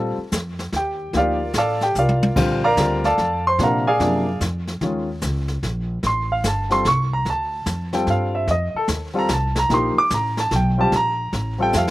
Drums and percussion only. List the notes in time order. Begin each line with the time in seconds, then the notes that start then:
0.32 kick, snare, hi-hat pedal
0.59 snare
0.72 kick, snare
1.13 brush sweep, kick, snare
1.53 kick, snare, hi-hat pedal
1.81 snare
1.95 hi-hat pedal, high tom
2.09 high tom
2.23 high tom
2.36 brush sweep, kick, snare, crash
2.77 kick, snare, hi-hat pedal
3.04 snare
3.18 kick, snare
3.59 brush sweep, kick, snare
4.00 kick, snare
4.41 kick, snare, hi-hat pedal
4.67 snare
4.81 brush sweep, kick, snare
5.21 kick, snare, hi-hat pedal
5.48 snare
5.63 kick, snare
6.03 brush sweep, kick, snare
6.44 kick, snare, hi-hat pedal
6.70 snare
6.85 kick, snare
7.25 brush sweep, kick, snare
7.66 kick, snare, hi-hat pedal
7.93 snare
8.07 kick, snare
8.48 brush sweep, kick, snare
8.88 kick, snare, hi-hat pedal
9.29 kick, snare, hi-hat pedal
9.56 snare
9.70 brush sweep, kick, snare
10.10 kick, snare, hi-hat pedal
10.37 snare
10.51 kick, snare
10.92 brush sweep, kick, snare
11.33 kick, snare
11.73 snare, hi-hat pedal